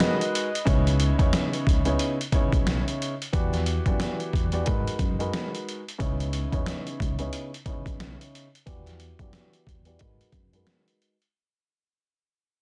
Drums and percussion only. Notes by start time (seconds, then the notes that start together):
0.00 snare, closed hi-hat
0.21 closed hi-hat
0.35 closed hi-hat
0.55 closed hi-hat
0.67 kick, closed hi-hat
0.87 closed hi-hat
1.00 closed hi-hat
1.19 kick, closed hi-hat
1.33 snare, closed hi-hat
1.53 closed hi-hat
1.67 kick, closed hi-hat
1.85 closed hi-hat
1.99 closed hi-hat
2.21 closed hi-hat
2.32 kick, closed hi-hat
2.52 kick, closed hi-hat
2.67 snare, closed hi-hat
2.88 closed hi-hat
3.02 closed hi-hat
3.22 closed hi-hat
3.33 kick, closed hi-hat
3.53 snare, closed hi-hat
3.66 closed hi-hat
3.86 kick, closed hi-hat
4.00 snare, closed hi-hat
4.20 closed hi-hat
4.33 kick, closed hi-hat
4.52 closed hi-hat
4.66 kick, closed hi-hat
4.88 closed hi-hat
4.99 kick, closed hi-hat
5.20 closed hi-hat
5.34 snare, closed hi-hat
5.55 closed hi-hat
5.69 closed hi-hat
5.89 closed hi-hat
6.00 kick, closed hi-hat
6.20 closed hi-hat
6.33 closed hi-hat
6.53 kick, closed hi-hat
6.66 snare, closed hi-hat
6.87 closed hi-hat
7.00 kick, closed hi-hat
7.19 closed hi-hat
7.33 closed hi-hat
7.54 closed hi-hat
7.66 kick, closed hi-hat
7.86 kick, closed hi-hat
8.00 snare, closed hi-hat
8.21 closed hi-hat
8.35 closed hi-hat
8.55 closed hi-hat
8.67 kick, closed hi-hat
8.86 snare, closed hi-hat
9.00 closed hi-hat
9.19 kick, closed hi-hat
9.33 snare, closed hi-hat
9.53 closed hi-hat
9.67 kick, closed hi-hat
9.85 closed hi-hat
9.99 kick, closed hi-hat
10.21 closed hi-hat
10.32 kick, closed hi-hat
10.53 closed hi-hat
10.67 snare, closed hi-hat
10.88 closed hi-hat
11.02 closed hi-hat
11.22 closed hi-hat